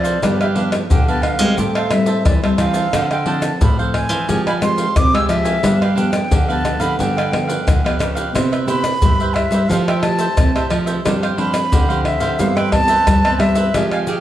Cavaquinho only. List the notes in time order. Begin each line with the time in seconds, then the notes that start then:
0.03 A4 C5 F5
0.23 D4 G4 B4 F5
0.41 G4 B4 F5
0.55 D4 G4 B4 F5
0.72 muted cavaquinho stroke
0.91 D4 G4 B4 F5
1.08 G4 B4 F5
1.39 G4 B4 F5
1.58 G4 C5 E5 A5
1.76 C5 E5 A5
1.92 muted cavaquinho stroke
2.07 C5 E5 A5
2.43 C5 E5 A5
2.58 G4 C5 E5 A5
2.74 C5 E5 A5
2.94 D4 A4 C5 F5
3.11 A4 C5 F5
3.26 D4 A4 C5 F5
3.43 muted cavaquinho stroke
3.61 D4 A4 C5 F5
3.79 A4 C5 F5
4.09 A4 C5 F5
4.28 G4 G#4 F5 G#5
4.47 G4 F5 G#5
4.62 muted cavaquinho stroke
4.79 G4 F5
5.14 G4 F5 G#5
5.29 G4 G#4 F5 G#5
5.45 G4 F5 G#5
5.63 D4 G4 B4 F5
5.81 G4 B4 F5
5.95 D4 G4 B4 F5
6.12 muted cavaquinho stroke
6.32 D4 G4 B4 F5
6.48 G4 B4 F5
6.80 G4 B4 F5
6.99 D4 G4 B4 F5
7.17 G4 B4 F5
7.32 muted cavaquinho stroke
7.47 G4 B4 F5
7.84 G4 B4 F5
7.99 D4 G4 B4 F5
8.15 G4 B4 F5
8.35 E4 B4 C5 E5
8.52 B4 C5 E5
8.67 E4 B4 C5 E5
8.84 muted cavaquinho stroke
9.03 E4 B4 C5 E5
9.21 B4 C5 E5
9.52 B4 C5 E5
9.72 F4 A4 C5 E5
9.89 A4 C5 E5
10.04 muted cavaquinho stroke
10.19 A4 C5 E5
10.56 A4 C5 E5
10.71 F4 A4 C5 E5
10.86 A4 C5 E5
11.05 D4 G4 C5 F5
11.23 G4 C5 F5
11.38 D4 G4 C5 F5
11.54 muted cavaquinho stroke
11.72 D4 G4 C5 F5
11.89 G4 C5 F5
12.20 G4 C5 F5
12.39 E4 B4 C5 E5
12.57 B4 C5 E5
12.72 muted cavaquinho stroke
12.89 B4 C5 E5
13.25 B4 C5 E5
13.40 E4 B4 C5 E5
13.56 B4 C5 E5
13.75 G4 G#4 F5 G#5
13.93 G4 F5 G#5
14.08 G4 G#4 F5 G#5